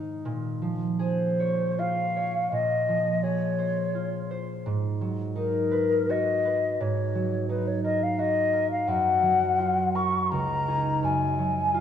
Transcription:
Already playing: G#2 D#3 G#3 D#4
0.25 A#2
0.62 F3
0.99 G#4 C5
1.40 C#5
1.79 F4 F5
2.16 C#5
2.52 A#2 D#5
2.88 F3
3.23 G#4 C#5
3.58 C5
3.95 F4
4.31 C5
4.66 G#2
5.01 F#3
5.35 D#4 A#4
5.71 B4
6.09 F#4 D#5
6.45 B4
6.80 G#2 C#5
7.15 F#3
7.49 D#4 B4
7.67 C#5
7.84 A#4 D#5
8.03 F5
8.19 F#4 D#5
8.53 A#4
8.71 F5
8.88 F#2 F#5
9.23 F#3
9.59 F4
9.95 A#4 C#6
10.30 C#2 A#5
10.68 D#4 G#4
11.03 F#2 G#5
11.39 F#3
11.74 F4

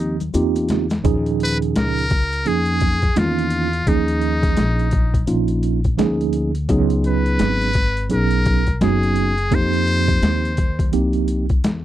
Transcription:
Already playing: D#2 F3 A#3 C4 D#4 G4
0.20 closed hi-hat, high conga, maracas
0.34 E2 A#3 C4 D#4 F4 G4, closed hi-hat, maracas
0.56 closed hi-hat, maracas
0.69 snare, closed hi-hat, low conga, maracas
0.90 snare, closed hi-hat, maracas
1.04 D#2 A#2 F3 C#4 D#4 G#4, kick, closed hi-hat
1.26 closed hi-hat
1.40 B4, closed hi-hat
1.62 closed hi-hat
1.76 C#2 A#4, snare, closed hi-hat
1.98 closed hi-hat
2.10 kick, closed hi-hat
2.33 closed hi-hat
2.45 F2 F3 A#3 C#4 D#4 G#4, closed hi-hat
2.66 closed hi-hat
2.80 kick, closed hi-hat
3.02 kick, closed hi-hat
3.16 E2 D#3 A#3 C#4 D#4 F4, snare, closed hi-hat
3.38 closed hi-hat
3.50 closed hi-hat
3.73 closed hi-hat
3.86 D#2 F3 A#3 C#4 D#4 G#4, kick, closed hi-hat
4.08 closed hi-hat
4.21 closed hi-hat
4.43 kick, closed hi-hat
4.57 A#1, snare, closed hi-hat
4.79 closed hi-hat
4.91 kick, closed hi-hat
5.14 kick, closed hi-hat
5.27 A#1 F3 A#3 C#4 D#4 F4, closed hi-hat
5.48 closed hi-hat
5.63 closed hi-hat
5.84 kick, closed hi-hat
5.97 D2 F3 A#3 C#4 D#4 G#4, snare, closed hi-hat
6.21 closed hi-hat
6.33 closed hi-hat
6.55 closed hi-hat
6.69 C#2 F#3 B3 C#4 D#4 G#4, kick, closed hi-hat
6.90 closed hi-hat
7.04 B4, closed hi-hat
7.26 closed hi-hat
7.39 G#1, snare, closed hi-hat
7.62 closed hi-hat
7.73 kick, closed hi-hat
7.97 closed hi-hat
8.09 B1 F#3 B3 C#4 D#4 G#4, closed hi-hat
8.13 A#4
8.31 closed hi-hat
8.45 kick, closed hi-hat
8.67 kick, closed hi-hat
8.80 F#1 F#3 B3 C#4 D#4 F#4 G#4, snare, closed hi-hat
9.03 closed hi-hat
9.16 closed hi-hat
9.38 closed hi-hat
9.51 F2 F3 A#3 C4 D#4 G4, kick, closed hi-hat
9.55 C5
9.73 closed hi-hat
9.87 closed hi-hat
10.08 kick, closed hi-hat
10.22 D#2, snare, closed hi-hat
10.45 closed hi-hat
10.57 kick, closed hi-hat
10.79 kick, closed hi-hat
10.92 C2 F3 A#3 C4 D#4 G4, closed hi-hat
11.13 closed hi-hat
11.28 closed hi-hat
11.49 kick, closed hi-hat
11.64 E2, snare, closed hi-hat

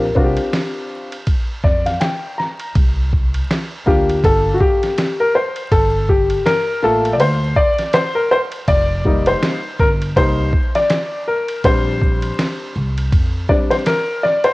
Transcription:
Already playing: A#1 A#4
0.15 C2 C4 D4 F4 F#4, kick
0.24 G4
0.37 ride
0.53 snare, hi-hat pedal, ride
1.12 ride
1.27 kick, ride
1.64 F2 D5, kick, snare
1.86 F5, snare, ride
2.00 G5, snare, hi-hat pedal, ride
2.38 A#5, snare
2.59 ride
2.75 C2, kick, ride
3.13 kick
3.34 ride
3.51 snare, hi-hat pedal, ride
3.86 D2 A#3 D4 F4 G4, kick, snare
4.10 ride
4.24 G1 A4, kick, ride
4.54 F#4
4.60 G4, kick
4.83 snare, ride
4.98 snare, hi-hat pedal, ride
5.20 A#4
5.35 C5
5.56 ride
5.71 G1 A4, kick, ride
6.09 G4, kick
6.30 ride
6.46 A#4, snare, hi-hat pedal, ride
6.82 A1 A3 A#3 F4 A4
7.05 ride
7.13 D5
7.19 D2 C5, ride
7.56 D5, kick
7.78 snare, ride
7.93 C5, snare, hi-hat pedal, ride
8.15 A#4
8.31 C5
8.52 ride
8.68 F1 D5, kick, ride
9.05 G3 A#3 D#4, kick
9.26 C5, ride
9.43 snare, hi-hat pedal, ride
9.79 G1 A#4, kick, snare
10.02 ride
10.16 C2 G3 A#3 D#4 C5, kick, ride
10.53 kick
10.75 D5, snare, ride
10.90 snare, hi-hat pedal, ride
11.28 A#4
11.48 ride
11.64 A#1 G3 C4 D4 C5, kick, ride
12.02 kick
12.22 ride
12.39 snare, hi-hat pedal, ride
12.76 C2
12.98 ride
13.12 F2, kick, ride
13.49 G3 C4 D4 D5, kick, snare
13.70 C5, snare, ride
13.86 A#4, snare, hi-hat pedal, ride
14.23 D5, snare
14.44 C5, ride

